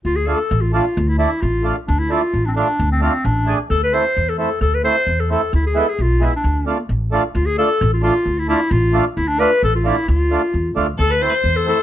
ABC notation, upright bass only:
X:1
M:2/4
L:1/8
Q:1/4=132
K:none
V:1 name="Upright bass" clef=bass
D,,2 A,,,2 | D,,2 A,,,2 | D,,2 A,,,2 | D,,2 A,,,2 |
D,,2 E,,2 | D,,2 E,,2 | D,,2 B,,,2 | D,,2 A,,,2 |
D,,2 A,,,2 | D,,2 A,,,2 | D,,2 A,,,2 | D,,2 E,, D,, |
D,,2 E,,2 |]